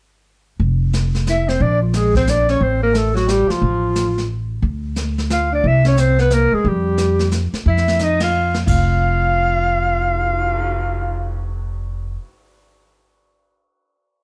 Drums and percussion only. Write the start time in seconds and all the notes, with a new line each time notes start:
0.60 brush sweep, kick
0.93 snare, hi-hat pedal
1.15 snare
1.27 snare, hi-hat pedal
1.49 snare
1.60 brush sweep, kick
1.93 snare, hi-hat pedal
2.15 kick, snare
2.27 snare, hi-hat pedal
2.49 snare
2.61 brush sweep, kick
2.94 snare, hi-hat pedal
3.17 snare
3.28 snare, hi-hat pedal
3.50 snare
3.62 brush sweep, kick
3.95 snare, hi-hat pedal
4.18 snare
4.63 brush sweep, kick
4.96 snare, hi-hat pedal
5.18 snare
5.30 snare, hi-hat pedal
5.64 brush sweep, kick
5.85 snare
5.97 snare, hi-hat pedal
6.18 snare
6.30 snare, hi-hat pedal
6.65 brush sweep, kick
6.97 snare, hi-hat pedal
7.19 snare
7.31 snare, hi-hat pedal
7.54 snare
7.66 brush sweep, kick
7.77 snare
7.88 snare
7.99 snare, hi-hat pedal
8.20 snare, ride
8.54 snare
8.67 kick, crash
8.89 cymbal swell